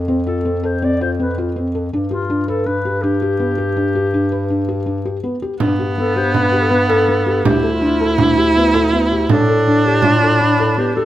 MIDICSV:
0, 0, Header, 1, 6, 480
1, 0, Start_track
1, 0, Tempo, 368777
1, 109, Time_signature, 5, 2, 24, 8
1, 14383, End_track
2, 0, Start_track
2, 0, Title_t, "Clarinet"
2, 0, Program_c, 0, 71
2, 347, Note_on_c, 0, 69, 68
2, 846, Note_on_c, 0, 72, 71
2, 866, Note_off_c, 0, 69, 0
2, 1090, Note_on_c, 0, 74, 83
2, 1109, Note_off_c, 0, 72, 0
2, 1318, Note_off_c, 0, 74, 0
2, 1326, Note_on_c, 0, 72, 72
2, 1429, Note_off_c, 0, 72, 0
2, 1561, Note_on_c, 0, 71, 64
2, 1777, Note_off_c, 0, 71, 0
2, 2747, Note_on_c, 0, 65, 76
2, 3191, Note_off_c, 0, 65, 0
2, 3230, Note_on_c, 0, 69, 77
2, 3459, Note_on_c, 0, 71, 86
2, 3479, Note_off_c, 0, 69, 0
2, 3929, Note_on_c, 0, 67, 82
2, 3948, Note_off_c, 0, 71, 0
2, 6815, Note_off_c, 0, 67, 0
2, 7779, Note_on_c, 0, 69, 78
2, 8020, Note_on_c, 0, 72, 84
2, 8040, Note_off_c, 0, 69, 0
2, 8239, Note_off_c, 0, 72, 0
2, 8247, Note_on_c, 0, 71, 82
2, 8608, Note_on_c, 0, 69, 71
2, 8628, Note_off_c, 0, 71, 0
2, 8722, Note_on_c, 0, 71, 90
2, 8742, Note_off_c, 0, 69, 0
2, 8954, Note_off_c, 0, 71, 0
2, 8962, Note_on_c, 0, 69, 76
2, 9418, Note_off_c, 0, 69, 0
2, 9446, Note_on_c, 0, 69, 74
2, 9677, Note_off_c, 0, 69, 0
2, 9685, Note_on_c, 0, 67, 77
2, 10029, Note_off_c, 0, 67, 0
2, 10053, Note_on_c, 0, 65, 58
2, 10170, Note_off_c, 0, 65, 0
2, 10175, Note_on_c, 0, 65, 62
2, 10626, Note_off_c, 0, 65, 0
2, 12109, Note_on_c, 0, 69, 77
2, 12830, Note_on_c, 0, 67, 75
2, 12850, Note_off_c, 0, 69, 0
2, 13061, Note_on_c, 0, 65, 77
2, 13080, Note_off_c, 0, 67, 0
2, 13540, Note_on_c, 0, 64, 87
2, 13559, Note_off_c, 0, 65, 0
2, 14027, Note_on_c, 0, 67, 89
2, 14046, Note_off_c, 0, 64, 0
2, 14248, Note_off_c, 0, 67, 0
2, 14256, Note_on_c, 0, 69, 81
2, 14383, Note_off_c, 0, 69, 0
2, 14383, End_track
3, 0, Start_track
3, 0, Title_t, "Felt piano"
3, 0, Program_c, 1, 0
3, 106, Note_on_c, 1, 60, 67
3, 245, Note_off_c, 1, 60, 0
3, 347, Note_on_c, 1, 65, 54
3, 486, Note_off_c, 1, 65, 0
3, 587, Note_on_c, 1, 60, 60
3, 726, Note_off_c, 1, 60, 0
3, 826, Note_on_c, 1, 69, 61
3, 965, Note_off_c, 1, 69, 0
3, 1070, Note_on_c, 1, 60, 64
3, 1207, Note_off_c, 1, 60, 0
3, 1315, Note_on_c, 1, 65, 62
3, 1451, Note_off_c, 1, 65, 0
3, 1555, Note_on_c, 1, 60, 59
3, 1691, Note_off_c, 1, 60, 0
3, 1796, Note_on_c, 1, 65, 64
3, 1932, Note_off_c, 1, 65, 0
3, 2032, Note_on_c, 1, 60, 56
3, 2168, Note_off_c, 1, 60, 0
3, 2275, Note_on_c, 1, 69, 57
3, 2411, Note_off_c, 1, 69, 0
3, 2517, Note_on_c, 1, 62, 72
3, 2652, Note_off_c, 1, 62, 0
3, 2744, Note_on_c, 1, 67, 58
3, 2883, Note_off_c, 1, 67, 0
3, 2991, Note_on_c, 1, 62, 69
3, 3127, Note_off_c, 1, 62, 0
3, 3230, Note_on_c, 1, 71, 65
3, 3366, Note_off_c, 1, 71, 0
3, 3466, Note_on_c, 1, 62, 62
3, 3604, Note_off_c, 1, 62, 0
3, 3712, Note_on_c, 1, 67, 57
3, 3848, Note_off_c, 1, 67, 0
3, 3950, Note_on_c, 1, 62, 66
3, 4086, Note_off_c, 1, 62, 0
3, 4189, Note_on_c, 1, 67, 58
3, 4325, Note_off_c, 1, 67, 0
3, 4421, Note_on_c, 1, 59, 63
3, 4560, Note_off_c, 1, 59, 0
3, 4657, Note_on_c, 1, 67, 52
3, 4797, Note_off_c, 1, 67, 0
3, 4902, Note_on_c, 1, 62, 70
3, 5041, Note_off_c, 1, 62, 0
3, 5144, Note_on_c, 1, 67, 53
3, 5282, Note_off_c, 1, 67, 0
3, 5385, Note_on_c, 1, 62, 65
3, 5523, Note_off_c, 1, 62, 0
3, 5621, Note_on_c, 1, 71, 57
3, 5760, Note_off_c, 1, 71, 0
3, 5858, Note_on_c, 1, 62, 57
3, 5998, Note_off_c, 1, 62, 0
3, 6099, Note_on_c, 1, 67, 61
3, 6239, Note_off_c, 1, 67, 0
3, 6328, Note_on_c, 1, 62, 57
3, 6471, Note_off_c, 1, 62, 0
3, 6579, Note_on_c, 1, 67, 59
3, 6718, Note_off_c, 1, 67, 0
3, 6813, Note_on_c, 1, 59, 59
3, 6954, Note_off_c, 1, 59, 0
3, 7059, Note_on_c, 1, 67, 59
3, 7198, Note_off_c, 1, 67, 0
3, 7304, Note_on_c, 1, 62, 76
3, 7442, Note_off_c, 1, 62, 0
3, 7542, Note_on_c, 1, 67, 55
3, 7681, Note_off_c, 1, 67, 0
3, 7783, Note_on_c, 1, 59, 66
3, 7922, Note_off_c, 1, 59, 0
3, 8021, Note_on_c, 1, 67, 63
3, 8160, Note_off_c, 1, 67, 0
3, 8260, Note_on_c, 1, 62, 67
3, 8399, Note_off_c, 1, 62, 0
3, 8490, Note_on_c, 1, 67, 58
3, 8632, Note_off_c, 1, 67, 0
3, 8734, Note_on_c, 1, 59, 67
3, 8875, Note_off_c, 1, 59, 0
3, 8981, Note_on_c, 1, 69, 63
3, 9120, Note_off_c, 1, 69, 0
3, 9220, Note_on_c, 1, 59, 62
3, 9359, Note_off_c, 1, 59, 0
3, 9457, Note_on_c, 1, 67, 65
3, 9597, Note_off_c, 1, 67, 0
3, 9691, Note_on_c, 1, 62, 74
3, 9833, Note_off_c, 1, 62, 0
3, 9930, Note_on_c, 1, 69, 57
3, 10073, Note_off_c, 1, 69, 0
3, 10173, Note_on_c, 1, 62, 70
3, 10315, Note_off_c, 1, 62, 0
3, 10418, Note_on_c, 1, 69, 69
3, 10558, Note_off_c, 1, 69, 0
3, 10655, Note_on_c, 1, 62, 73
3, 10796, Note_off_c, 1, 62, 0
3, 10899, Note_on_c, 1, 67, 64
3, 11039, Note_off_c, 1, 67, 0
3, 11145, Note_on_c, 1, 59, 67
3, 11283, Note_off_c, 1, 59, 0
3, 11378, Note_on_c, 1, 69, 65
3, 11518, Note_off_c, 1, 69, 0
3, 11623, Note_on_c, 1, 59, 68
3, 11762, Note_off_c, 1, 59, 0
3, 11867, Note_on_c, 1, 67, 65
3, 12005, Note_off_c, 1, 67, 0
3, 12113, Note_on_c, 1, 62, 76
3, 12249, Note_off_c, 1, 62, 0
3, 12356, Note_on_c, 1, 69, 60
3, 12492, Note_off_c, 1, 69, 0
3, 12593, Note_on_c, 1, 62, 73
3, 12730, Note_off_c, 1, 62, 0
3, 12833, Note_on_c, 1, 69, 63
3, 12970, Note_off_c, 1, 69, 0
3, 13073, Note_on_c, 1, 62, 65
3, 13210, Note_off_c, 1, 62, 0
3, 13318, Note_on_c, 1, 69, 65
3, 13454, Note_off_c, 1, 69, 0
3, 13553, Note_on_c, 1, 62, 67
3, 13690, Note_off_c, 1, 62, 0
3, 13793, Note_on_c, 1, 69, 70
3, 13931, Note_off_c, 1, 69, 0
3, 14029, Note_on_c, 1, 59, 63
3, 14168, Note_off_c, 1, 59, 0
3, 14277, Note_on_c, 1, 67, 67
3, 14383, Note_off_c, 1, 67, 0
3, 14383, End_track
4, 0, Start_track
4, 0, Title_t, "Viola"
4, 0, Program_c, 2, 41
4, 7287, Note_on_c, 2, 59, 94
4, 9709, Note_on_c, 2, 64, 106
4, 9728, Note_off_c, 2, 59, 0
4, 12118, Note_on_c, 2, 62, 102
4, 12137, Note_off_c, 2, 64, 0
4, 14383, Note_off_c, 2, 62, 0
4, 14383, End_track
5, 0, Start_track
5, 0, Title_t, "Bass clarinet"
5, 0, Program_c, 3, 71
5, 0, Note_on_c, 3, 41, 60
5, 2451, Note_off_c, 3, 41, 0
5, 2516, Note_on_c, 3, 43, 66
5, 7081, Note_off_c, 3, 43, 0
5, 7302, Note_on_c, 3, 43, 67
5, 9655, Note_off_c, 3, 43, 0
5, 9696, Note_on_c, 3, 38, 75
5, 12054, Note_off_c, 3, 38, 0
5, 12116, Note_on_c, 3, 45, 73
5, 14383, Note_off_c, 3, 45, 0
5, 14383, End_track
6, 0, Start_track
6, 0, Title_t, "Frame drum"
6, 7291, Note_on_c, 9, 64, 54
6, 7421, Note_off_c, 9, 64, 0
6, 7783, Note_on_c, 9, 64, 17
6, 7913, Note_off_c, 9, 64, 0
6, 8255, Note_on_c, 9, 64, 51
6, 8386, Note_off_c, 9, 64, 0
6, 8977, Note_on_c, 9, 64, 45
6, 9107, Note_off_c, 9, 64, 0
6, 9219, Note_on_c, 9, 64, 19
6, 9349, Note_off_c, 9, 64, 0
6, 9701, Note_on_c, 9, 64, 64
6, 9832, Note_off_c, 9, 64, 0
6, 10179, Note_on_c, 9, 64, 17
6, 10309, Note_off_c, 9, 64, 0
6, 10651, Note_on_c, 9, 64, 60
6, 10782, Note_off_c, 9, 64, 0
6, 11379, Note_on_c, 9, 64, 46
6, 11509, Note_off_c, 9, 64, 0
6, 12097, Note_on_c, 9, 64, 61
6, 12227, Note_off_c, 9, 64, 0
6, 12581, Note_on_c, 9, 64, 17
6, 12711, Note_off_c, 9, 64, 0
6, 13047, Note_on_c, 9, 64, 57
6, 13177, Note_off_c, 9, 64, 0
6, 13776, Note_on_c, 9, 64, 41
6, 13907, Note_off_c, 9, 64, 0
6, 14018, Note_on_c, 9, 64, 18
6, 14148, Note_off_c, 9, 64, 0
6, 14383, End_track
0, 0, End_of_file